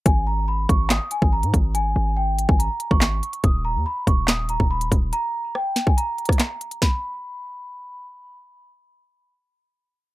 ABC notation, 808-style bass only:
X:1
M:4/4
L:1/16
Q:1/4=142
K:D#phr
V:1 name="808-style bass" clef=bass
G,,,6 G,,,3 z2 G,,,2 G,, G,,,2- | G,,,2 G,,,4- G,,, G,,,2 z2 G,,,3 z2 | D,,,3 D,, z2 D,,,4- D,,, D,,,3 D,,,2 | z16 |
z16 | z16 |]